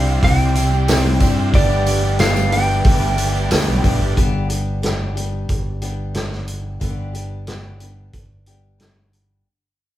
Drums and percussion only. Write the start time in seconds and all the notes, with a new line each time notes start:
0.06 tambourine
0.23 kick, open hi-hat
0.40 tambourine
0.55 open hi-hat, tambourine
0.73 tambourine
0.88 snare, open hi-hat, tambourine
1.20 kick, open hi-hat, tambourine
1.54 kick, open hi-hat, tambourine
1.70 tambourine
1.86 open hi-hat, tambourine
2.04 tambourine
2.19 snare, open hi-hat, tambourine
2.36 tambourine
2.52 open hi-hat, tambourine
2.68 tambourine
2.84 kick, open hi-hat, tambourine
3.02 tambourine
3.18 open hi-hat, tambourine
3.35 tambourine
3.51 snare, open hi-hat, tambourine
3.68 tambourine
3.84 kick, open hi-hat
4.02 tambourine
4.17 kick, closed hi-hat
4.50 closed hi-hat
4.83 snare, closed hi-hat
5.17 closed hi-hat
5.49 kick, closed hi-hat
5.82 closed hi-hat
6.14 snare, closed hi-hat
6.32 snare
6.48 closed hi-hat
6.81 kick, closed hi-hat
7.15 closed hi-hat
7.47 snare, closed hi-hat
7.80 closed hi-hat
8.13 kick, closed hi-hat
8.46 closed hi-hat
8.80 snare, closed hi-hat
9.13 closed hi-hat